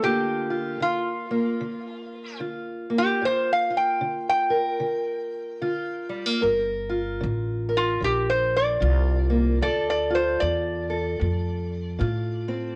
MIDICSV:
0, 0, Header, 1, 4, 480
1, 0, Start_track
1, 0, Tempo, 797872
1, 24, Time_signature, 4, 2, 24, 8
1, 7674, End_track
2, 0, Start_track
2, 0, Title_t, "Resonator guitar played with a steel bar"
2, 0, Program_c, 0, 25
2, 22, Note_on_c, 0, 67, 89
2, 489, Note_off_c, 0, 67, 0
2, 495, Note_on_c, 0, 65, 80
2, 1436, Note_off_c, 0, 65, 0
2, 1794, Note_on_c, 0, 67, 98
2, 1945, Note_off_c, 0, 67, 0
2, 1957, Note_on_c, 0, 72, 98
2, 2106, Note_off_c, 0, 72, 0
2, 2122, Note_on_c, 0, 77, 81
2, 2266, Note_off_c, 0, 77, 0
2, 2269, Note_on_c, 0, 79, 74
2, 2577, Note_off_c, 0, 79, 0
2, 2584, Note_on_c, 0, 79, 99
2, 4001, Note_off_c, 0, 79, 0
2, 4674, Note_on_c, 0, 65, 90
2, 4825, Note_off_c, 0, 65, 0
2, 4839, Note_on_c, 0, 67, 96
2, 4987, Note_off_c, 0, 67, 0
2, 4991, Note_on_c, 0, 72, 85
2, 5143, Note_off_c, 0, 72, 0
2, 5153, Note_on_c, 0, 74, 86
2, 5769, Note_off_c, 0, 74, 0
2, 5790, Note_on_c, 0, 74, 99
2, 5942, Note_off_c, 0, 74, 0
2, 5955, Note_on_c, 0, 74, 86
2, 6105, Note_off_c, 0, 74, 0
2, 6105, Note_on_c, 0, 72, 85
2, 6257, Note_on_c, 0, 74, 89
2, 6259, Note_off_c, 0, 72, 0
2, 7674, Note_off_c, 0, 74, 0
2, 7674, End_track
3, 0, Start_track
3, 0, Title_t, "Steel-string acoustic guitar"
3, 0, Program_c, 1, 25
3, 14, Note_on_c, 1, 43, 71
3, 18, Note_on_c, 1, 50, 53
3, 22, Note_on_c, 1, 58, 59
3, 27, Note_on_c, 1, 65, 58
3, 300, Note_off_c, 1, 65, 0
3, 303, Note_on_c, 1, 65, 56
3, 461, Note_off_c, 1, 43, 0
3, 477, Note_off_c, 1, 50, 0
3, 484, Note_on_c, 1, 50, 63
3, 784, Note_off_c, 1, 58, 0
3, 786, Note_on_c, 1, 58, 60
3, 936, Note_off_c, 1, 50, 0
3, 967, Note_on_c, 1, 50, 67
3, 1418, Note_off_c, 1, 50, 0
3, 1443, Note_off_c, 1, 65, 0
3, 1443, Note_on_c, 1, 50, 59
3, 1445, Note_on_c, 1, 65, 52
3, 1741, Note_off_c, 1, 58, 0
3, 1743, Note_on_c, 1, 58, 55
3, 1896, Note_off_c, 1, 50, 0
3, 1932, Note_on_c, 1, 43, 70
3, 1935, Note_off_c, 1, 65, 0
3, 1938, Note_on_c, 1, 65, 53
3, 2225, Note_off_c, 1, 65, 0
3, 2228, Note_on_c, 1, 65, 62
3, 2381, Note_off_c, 1, 43, 0
3, 2411, Note_on_c, 1, 50, 72
3, 2708, Note_on_c, 1, 70, 65
3, 2861, Note_off_c, 1, 50, 0
3, 2887, Note_on_c, 1, 50, 68
3, 3338, Note_off_c, 1, 50, 0
3, 3378, Note_off_c, 1, 65, 0
3, 3378, Note_on_c, 1, 50, 65
3, 3380, Note_on_c, 1, 65, 61
3, 3663, Note_off_c, 1, 58, 0
3, 3665, Note_on_c, 1, 55, 61
3, 3764, Note_off_c, 1, 55, 0
3, 3764, Note_on_c, 1, 58, 45
3, 3824, Note_off_c, 1, 50, 0
3, 3839, Note_off_c, 1, 70, 0
3, 3853, Note_on_c, 1, 43, 72
3, 3862, Note_off_c, 1, 58, 0
3, 3863, Note_on_c, 1, 70, 66
3, 3871, Note_off_c, 1, 65, 0
3, 4147, Note_on_c, 1, 65, 64
3, 4301, Note_off_c, 1, 43, 0
3, 4335, Note_on_c, 1, 50, 74
3, 4618, Note_off_c, 1, 70, 0
3, 4625, Note_on_c, 1, 70, 68
3, 4782, Note_off_c, 1, 50, 0
3, 4816, Note_on_c, 1, 50, 64
3, 5262, Note_off_c, 1, 50, 0
3, 5295, Note_on_c, 1, 50, 64
3, 5297, Note_off_c, 1, 65, 0
3, 5299, Note_on_c, 1, 65, 60
3, 5594, Note_on_c, 1, 58, 61
3, 5741, Note_off_c, 1, 50, 0
3, 5756, Note_off_c, 1, 70, 0
3, 5761, Note_off_c, 1, 58, 0
3, 5783, Note_on_c, 1, 38, 73
3, 5789, Note_on_c, 1, 69, 67
3, 6075, Note_off_c, 1, 65, 0
3, 6078, Note_on_c, 1, 65, 61
3, 6225, Note_off_c, 1, 38, 0
3, 6263, Note_on_c, 1, 50, 65
3, 6554, Note_off_c, 1, 69, 0
3, 6556, Note_on_c, 1, 69, 60
3, 6705, Note_off_c, 1, 50, 0
3, 6736, Note_on_c, 1, 45, 68
3, 7181, Note_off_c, 1, 45, 0
3, 7211, Note_on_c, 1, 50, 61
3, 7214, Note_off_c, 1, 65, 0
3, 7216, Note_on_c, 1, 65, 56
3, 7509, Note_on_c, 1, 60, 58
3, 7657, Note_off_c, 1, 50, 0
3, 7674, Note_off_c, 1, 60, 0
3, 7674, Note_off_c, 1, 65, 0
3, 7674, Note_off_c, 1, 69, 0
3, 7674, End_track
4, 0, Start_track
4, 0, Title_t, "Upright bass"
4, 0, Program_c, 2, 32
4, 3868, Note_on_c, 2, 31, 75
4, 4332, Note_off_c, 2, 31, 0
4, 4352, Note_on_c, 2, 33, 91
4, 4814, Note_off_c, 2, 33, 0
4, 4827, Note_on_c, 2, 34, 81
4, 5291, Note_off_c, 2, 34, 0
4, 5306, Note_on_c, 2, 36, 105
4, 5770, Note_off_c, 2, 36, 0
4, 5787, Note_on_c, 2, 38, 75
4, 6251, Note_off_c, 2, 38, 0
4, 6268, Note_on_c, 2, 40, 95
4, 6731, Note_off_c, 2, 40, 0
4, 6745, Note_on_c, 2, 41, 83
4, 7209, Note_off_c, 2, 41, 0
4, 7223, Note_on_c, 2, 45, 97
4, 7674, Note_off_c, 2, 45, 0
4, 7674, End_track
0, 0, End_of_file